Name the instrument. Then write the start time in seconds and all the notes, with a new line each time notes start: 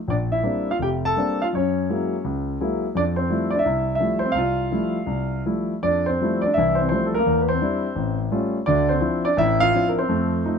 grand piano
0.08 A#1 D4 D5
0.32 E4 E5
0.43 G3 A#3 C4 D4
0.71 F4 F5
0.79 F1 G5
0.83 G4
1.05 A4 A5
1.16 G3 A#3 C4 D4
1.42 F4 F5
1.53 F#2 C#4 C#5
1.89 F#3 G#3 A#3 E4
2.24 C#2
2.61 F#3 G#3 A#3 E4
2.95 F2 D4 D5
3.16 C4 C5
3.30 F3 G3 A3 E4
3.50 D5
3.55 D4 D5 E5
3.65 C2 E4
3.95 E5
4.00 F3 G3 A3 E4
4.19 C5
4.25 C4
4.32 C2 F5
4.38 F4
4.71 F3 G3 A3 E4
5.06 C2
5.46 F3 G3 A3 E4
5.83 F2 D4 D5
6.06 C4 C5
6.21 F3 G3 A3 E4
6.42 D5
6.46 D4
6.54 C2 E3 E5
6.59 E4
6.75 C5
6.81 C4
6.89 F3 G3 A3 E4 C5
6.95 C4
7.06 A4
7.14 A#4
7.19 A#3
7.27 E2
7.41 B4
7.49 C5
7.53 C4
7.61 G3 D4 E4
7.96 A1
8.31 G3 A3 C#4 F4
8.66 D2 D3 D4 D5
8.89 C4 C5
9.01 F3 C4 D4 E4
9.25 D4 D5
9.37 A1 E4 E5
9.60 F4 F5
9.74 F3 C4 D4 E4
9.89 A#4
9.98 C4 C5
10.09 F2 A3
10.45 F3 A3 D#4